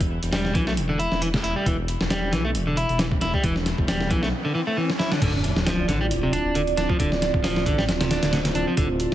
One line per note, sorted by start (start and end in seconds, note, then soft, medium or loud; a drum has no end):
0.00 0.18 E1 loud
0.00 kick loud
0.00 closed hi-hat medium
0.23 0.56 E1 medium
0.23 closed hi-hat medium
0.33 0.54 G3 medium
0.33 snare loud
0.33 open hi-hat medium
0.45 snare soft
0.55 0.79 B1 medium
0.55 0.65 E3 loud
0.55 kick loud
0.55 closed hi-hat medium
0.67 0.72 A3 medium
0.67 snare medium
0.77 1.07 E1 medium
0.77 closed hi-hat medium
0.89 0.98 D3 medium
0.99 1.21 E4 medium
0.99 closed hi-hat medium
1.12 1.40 E1 medium
1.12 snare soft
1.22 1.28 E3 medium
1.22 closed hi-hat medium
1.34 snare loud
1.44 1.53 E1 medium
1.44 1.54 E4 medium
1.44 closed hi-hat medium
1.56 1.66 G3 medium
1.66 1.96 E1 loud
1.66 1.76 E3 medium
1.66 kick loud
1.66 closed hi-hat medium
1.66 riser medium
1.88 closed hi-hat medium
2.01 2.34 E1 medium
2.01 snare medium
2.10 2.32 G3 medium
2.10 snare loud
2.10 closed hi-hat medium
2.33 2.57 B1 medium
2.33 2.43 E3 loud
2.33 snare medium
2.33 closed hi-hat medium
2.45 2.50 A3 medium
2.55 2.85 E1 medium
2.55 closed hi-hat medium
2.67 2.76 D3 medium
2.77 2.98 E4 medium
2.77 closed hi-hat medium
2.89 3.18 E1 medium
2.89 closed hi-hat soft
2.99 3.05 E3 medium
2.99 snare loud
2.99 closed hi-hat medium
3.12 kick loud
3.21 3.31 E1 medium
3.21 3.32 E4 medium
3.21 snare soft
3.21 closed hi-hat medium
3.34 3.43 G3 medium
3.34 kick medium
3.44 3.74 E1 loud
3.44 3.54 E3 medium
3.44 kick loud
3.44 closed hi-hat medium
3.56 snare soft
3.66 snare soft
3.66 closed hi-hat medium
3.78 4.12 E1 medium
3.78 kick medium
3.88 4.10 G3 medium
3.88 snare loud
3.88 open hi-hat medium
4.01 snare soft
4.11 4.33 B1 medium
4.11 4.21 E3 loud
4.11 kick loud
4.11 closed hi-hat medium
4.23 4.28 A3 medium
4.23 snare medium
4.45 4.54 D3 medium
4.55 4.61 E3 medium
4.67 4.76 A3 medium
4.77 4.89 E3 medium
4.90 snare medium
4.99 5.10 E4 medium
4.99 snare medium
5.11 5.20 D3 medium
5.11 snare medium
5.22 5.52 D1 loud
5.22 5.32 D3 medium
5.22 9.14 C4 medium
5.22 9.14 E4 medium
5.22 9.14 F4 medium
5.22 8.74 D5 medium
5.22 kick loud
5.22 closed hi-hat medium
5.22 crash medium
5.22 sub drop medium
5.44 closed hi-hat medium
5.56 5.90 D1 medium
5.56 snare medium
5.66 5.87 F3 medium
5.66 snare loud
5.66 closed hi-hat medium
5.88 6.12 A1 medium
5.88 5.98 D3 loud
5.88 snare medium
5.88 closed hi-hat medium
6.01 6.06 G3 medium
6.11 6.40 D1 loud
6.11 closed hi-hat medium
6.23 6.32 C3 medium
6.33 6.54 D4 medium
6.33 closed hi-hat medium
6.45 6.73 D1 medium
6.55 6.61 D3 medium
6.55 closed hi-hat medium
6.67 closed hi-hat soft
6.77 6.86 D1 medium
6.77 6.87 D4 medium
6.77 snare soft
6.77 closed hi-hat medium
6.89 6.99 F3 medium
6.89 kick medium
7.00 7.29 D1 loud
7.00 7.09 D3 medium
7.00 kick loud
7.00 closed hi-hat medium
7.12 snare soft
7.22 snare soft
7.22 closed hi-hat medium
7.34 7.68 D1 medium
7.34 kick loud
7.44 7.65 F3 medium
7.44 snare loud
7.44 open hi-hat medium
7.56 snare soft
7.66 7.90 A1 medium
7.66 7.76 D3 loud
7.66 kick loud
7.66 closed hi-hat medium
7.78 7.83 G3 medium
7.78 snare medium
7.88 8.18 D1 medium
7.88 snare loud
7.88 closed hi-hat medium
8.01 8.10 C3 medium
8.01 snare loud
8.01 closed hi-hat medium
8.11 8.32 D4 medium
8.11 snare loud
8.11 closed hi-hat medium
8.23 8.51 D1 medium
8.23 snare loud
8.23 closed hi-hat medium
8.33 8.39 D3 medium
8.33 snare loud
8.33 closed hi-hat medium
8.45 snare loud
8.45 closed hi-hat medium
8.55 8.64 D1 medium
8.55 8.65 D4 medium
8.55 closed hi-hat medium
8.67 8.77 F3 medium
8.77 9.07 D1 loud
8.77 8.87 D3 medium
8.77 9.14 C5 medium
8.77 kick loud
8.77 closed hi-hat medium
9.00 closed hi-hat medium